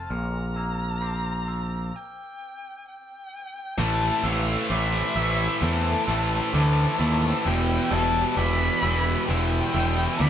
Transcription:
0.00 0.11 F3 soft
0.00 0.11 A3 medium
0.00 0.10 C4 medium
0.00 1.90 C4 medium
0.00 0.11 F4 medium
0.00 1.91 F5 medium
0.00 0.13 A5 medium
0.10 1.91 A#1 medium
0.10 1.94 A#2 medium
0.10 1.92 A#4 medium
0.10 1.97 A#5 medium
0.10 0.56 F6 medium
0.56 1.94 A#3 medium
0.56 1.02 E6 medium
1.02 1.94 C4 medium
1.02 1.48 D6 medium
1.47 1.94 F3 soft
1.47 2.40 E6 medium
1.96 2.87 G5 medium
2.88 3.80 G5 medium
3.78 4.10 A1 loud
3.78 4.23 A2 medium
3.78 4.24 E3 medium
3.78 7.41 A3 medium
3.78 4.24 A3 loud
3.78 7.41 C4 medium
3.78 7.41 C5 loud
3.78 4.26 A5 loud
4.24 4.55 A1 medium
4.24 4.69 A2 medium
4.24 4.70 E3 medium
4.24 4.70 A3 loud
4.24 4.73 F5 medium
4.24 4.70 E6 medium
4.70 5.02 A1 medium
4.70 5.16 A2 medium
4.70 5.17 E3 loud
4.70 5.16 A3 loud
4.70 5.64 E5 medium
4.70 5.16 D6 medium
5.16 5.47 A1 medium
5.16 5.61 A2 medium
5.16 5.62 E3 loud
5.16 5.62 A3 medium
5.16 6.06 E6 medium
5.62 5.93 E2 medium
5.62 6.07 A2 loud
5.62 6.08 E3 loud
5.62 6.08 A3 loud
5.62 6.54 A5 loud
6.07 6.39 A1 medium
6.07 6.53 A2 medium
6.07 6.54 E3 medium
6.07 6.53 A3 medium
6.07 6.53 E6 medium
6.53 6.85 D2 loud
6.53 6.98 A2 loud
6.53 7.00 E3 loud
6.53 6.99 A3 loud
6.53 7.47 A5 loud
6.53 6.99 D6 medium
6.99 7.31 D#2 medium
6.99 7.42 A2 medium
6.99 7.45 E3 loud
6.99 7.43 A3 medium
6.99 7.45 E6 medium
7.44 7.77 E1 loud
7.44 7.90 E2 medium
7.44 7.91 B2 loud
7.44 10.30 E3 medium
7.44 7.92 E3 loud
7.44 10.30 B3 medium
7.44 10.30 G4 loud
7.44 7.92 G5 loud
7.91 8.23 E1 medium
7.91 8.36 E2 medium
7.91 8.37 B2 medium
7.91 8.38 E3 loud
7.91 8.39 A5 loud
7.91 8.36 E6 medium
8.37 8.68 E1 medium
8.37 8.81 E2 medium
8.37 8.82 B2 loud
8.37 8.83 E3 loud
8.37 9.27 B5 loud
8.37 8.83 D6 medium
8.83 9.14 E1 medium
8.83 9.27 E2 medium
8.83 9.28 B2 medium
8.83 9.29 E3 medium
8.83 9.72 E6 medium
9.28 9.60 E1 loud
9.28 9.73 E2 loud
9.28 9.74 B2 loud
9.28 9.75 E3 loud
9.28 10.22 G5 loud
9.73 10.06 E1 medium
9.73 10.19 E2 medium
9.73 10.19 B2 medium
9.73 10.21 E3 loud
9.73 10.19 E6 medium
10.20 10.30 D2 medium
10.20 10.30 E2 loud
10.20 10.30 B2 loud
10.20 10.30 E3 loud
10.20 10.30 B5 loud
10.20 10.30 D6 medium

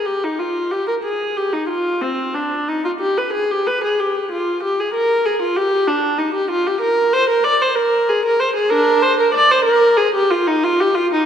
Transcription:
0.06 0.23 G4 medium
0.24 0.40 D#4 medium
0.39 0.72 F4 medium
0.71 0.88 G4 medium
0.88 0.94 A#4 medium
1.04 1.36 G#4 medium
1.37 1.53 G4 medium
1.53 1.70 D#4 medium
1.69 2.01 F4 medium
2.02 2.35 C4 medium
2.35 2.68 D4 medium
2.68 2.84 D#4 medium
2.85 2.91 F4 medium
3.00 3.16 G4 medium
3.18 3.34 B4 medium
3.33 3.49 G#4 medium
3.51 3.67 G4 medium
3.67 3.83 B4 medium
3.84 3.99 G#4 medium
4.00 4.31 G4 medium
4.32 4.62 F4 medium
4.63 4.78 G4 medium
4.80 4.95 G#4 medium
4.94 5.25 A#4 medium
5.25 5.41 G#4 medium
5.42 5.56 F4 medium
5.57 5.87 G4 medium
5.87 6.18 D4 medium
6.18 6.34 D#4 medium
6.34 6.49 G4 medium
6.51 6.65 F4 medium
6.67 6.81 G4 medium
6.81 7.12 A#4 medium
7.13 7.28 C5 medium
7.30 7.44 A#4 medium
7.44 7.59 D5 medium
7.62 7.76 C5 medium
7.76 8.07 A#4 medium
8.09 8.24 G#4 medium
8.25 8.40 A#4 medium
8.40 8.55 C5 medium
8.56 8.70 G#4 medium
8.71 9.00 D4 medium
8.71 9.02 A#4 medium
9.02 9.18 C5 medium
9.20 9.34 A#4 medium
9.34 9.49 D5 medium
9.51 9.66 C5 medium
9.65 9.97 A#4 medium
9.97 10.14 G#4 medium
10.15 10.31 G4 medium
10.30 10.47 F4 medium
10.47 10.64 D#4 medium
10.64 10.80 F4 medium
10.80 10.96 G4 medium
10.95 11.12 F4 medium
11.13 11.26 D#4 medium

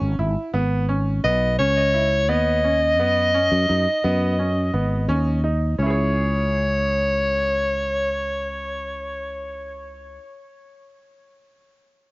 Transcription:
0.00 0.18 G#1 medium
0.00 0.13 C#4 medium
0.19 0.35 G#1 medium
0.19 0.48 E4 medium
0.54 1.20 G#1 medium
0.54 0.83 B3 medium
0.89 1.18 C#4 medium
1.24 1.57 B1 medium
1.24 1.53 B3 medium
1.24 1.56 D#5 medium
1.59 2.29 C#2 medium
1.59 1.88 C#4 medium
1.59 2.31 C#5 loud
1.94 2.23 E4 medium
2.29 2.99 D#2 medium
2.29 2.58 B3 medium
2.29 5.09 D#5 medium
2.64 2.93 C#4 medium
2.99 3.48 F#2 medium
2.99 3.29 B3 medium
3.34 3.63 C#4 medium
3.52 3.68 F#2 medium
3.69 3.86 F#2 medium
3.69 3.98 D#4 medium
4.04 4.70 F#2 medium
4.04 4.33 B3 medium
4.39 4.68 C#4 medium
4.74 5.06 G#1 medium
4.74 5.03 B3 medium
5.08 5.74 D#2 medium
5.08 5.38 C#4 medium
5.44 5.73 D#4 medium
5.78 10.17 C#2 medium
5.78 10.17 C#4 medium
5.78 10.21 E4 medium
5.78 10.04 C#5 medium
5.86 10.25 G#4 medium
5.90 10.29 C#5 medium

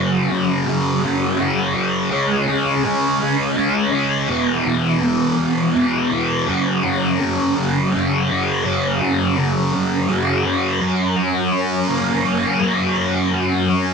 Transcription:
0.00 0.66 F#2 medium
0.00 0.31 C#3 medium
0.00 0.29 F#3 loud
0.30 0.67 C#3 soft
0.30 0.68 F#3 medium
0.67 1.37 F#2 medium
0.67 1.04 C#3 medium
0.67 1.02 F#3 medium
1.03 1.39 C#3 soft
1.03 1.39 F#3 medium
1.39 2.10 F#2 medium
1.39 1.75 C#3 medium
1.39 1.73 F#3 medium
1.74 2.10 C#3 medium
1.74 2.09 F#3 medium
2.11 2.83 C#3 medium
2.11 2.50 G#3 medium
2.11 2.47 C#4 medium
2.48 2.85 G#3 soft
2.48 2.86 C#4 medium
2.84 3.56 C#3 medium
2.84 3.21 G#3 medium
2.84 3.19 C#4 medium
3.20 3.56 G#3 medium
3.20 3.58 C#4 medium
3.57 4.28 C#3 medium
3.57 3.94 G#3 medium
3.57 3.91 C#4 medium
3.92 4.29 G#3 medium
3.92 4.27 C#4 medium
4.28 5.00 E2 medium
4.28 4.66 B2 medium
4.28 4.64 E3 medium
4.65 5.01 B2 medium
4.65 5.03 E3 medium
5.01 5.73 E2 medium
5.01 5.39 B2 medium
5.01 5.37 E3 medium
5.38 5.74 B2 soft
5.38 5.76 E3 medium
5.74 6.45 E2 medium
5.74 6.12 B2 medium
5.74 6.10 E3 medium
6.11 6.46 B2 medium
6.11 6.49 E3 medium
6.47 7.19 F#2 medium
6.47 6.84 C#3 medium
6.47 6.83 F#3 medium
6.83 7.20 C#3 medium
6.83 7.21 F#3 medium
7.20 7.92 F#2 medium
7.20 7.57 C#3 medium
7.20 7.55 F#3 medium
7.56 7.92 C#3 medium
7.56 7.94 F#3 medium
7.93 8.64 F#2 medium
7.93 8.30 C#3 medium
7.93 8.29 F#3 medium
8.29 8.64 C#3 medium
8.29 8.65 F#3 medium
8.64 9.35 F#2 medium
8.64 9.01 C#3 medium
8.64 8.99 F#3 medium
9.01 9.36 C#3 medium
9.01 9.37 F#3 medium
9.36 10.07 F#2 medium
9.36 9.74 C#3 medium
9.36 9.72 F#3 medium
9.73 10.08 C#3 medium
9.73 10.09 F#3 medium
10.08 10.79 F#2 medium
10.08 10.45 C#3 medium
10.08 10.42 F#3 medium
10.44 10.80 C#3 medium
10.44 10.79 F#3 medium
10.81 12.62 F#2 medium
11.16 12.59 F#3 medium
11.52 12.24 C#4 medium
11.88 13.69 A#3 medium
12.25 13.68 C#4 medium
12.60 13.32 F#3 medium
12.97 13.94 F#2 medium
13.34 13.94 F#3 medium
13.69 13.94 C#4 medium

